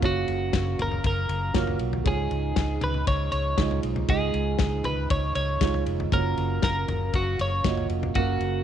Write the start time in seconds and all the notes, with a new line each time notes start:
Already playing: C#3 F#3 A#3 F4 F#4 C#5 F5
0.00 F#1 C#3 A#3 F#4 C#5 F5, kick, ride
0.05 F#4
0.28 F#1, ride
0.53 F#1, kick, snare, ride
0.79 F#1 A#4, floor tom, ride
0.92 floor tom
1.04 F#1 A#4, kick, ride
1.29 F#1, ride
1.54 F#1 A#3 F4 F#4 C#5, kick, snare, ride
1.67 floor tom
1.79 B1, ride
1.93 floor tom
2.04 C#2 G#2 F3 G#3 D#4 F4 G#4 C#5, kick, ride
2.31 C#2, ride
2.56 C#2, kick, snare, ride
2.81 C#2 B4, floor tom, ride
2.94 floor tom
3.07 C#2 C#5, kick, ride
3.32 C#2 C#5, ride
3.57 C#2 G#3 D#4 F4 D#5, kick, snare, ride
3.71 floor tom
3.83 B1, ride
3.96 floor tom
4.08 C#2 G#2 G#3 A#3 D#4 F4 G#4 D#5, kick, ride
4.34 C#2, ride
4.59 C#2, kick, snare, ride
4.84 C#2 B4, floor tom, ride
5.10 C#2 C#5, kick, ride
5.35 C#2 C#5, ride
5.61 C#2 G#3 D#4 F4 C#5, kick, snare, ride
5.74 floor tom
5.86 F1, ride
6.00 floor tom
6.11 F#1 C#3 F#3 A#3 F4 F#4 A#4 C#5 F5, kick, ride
6.37 F#1, ride
6.62 F#1 A#4, kick, snare, ride
6.88 F#1, floor tom, ride
7.13 F#1 F#4, kick, ride
7.39 F#1 C#5, ride
7.64 F#1 A#3 F4 F#4 D#5, kick, snare, ride
7.77 floor tom
7.90 F1, ride
8.03 floor tom
8.15 F#1 C#3 A#3 F#4 A#4 F5, kick, ride
8.40 F#1, ride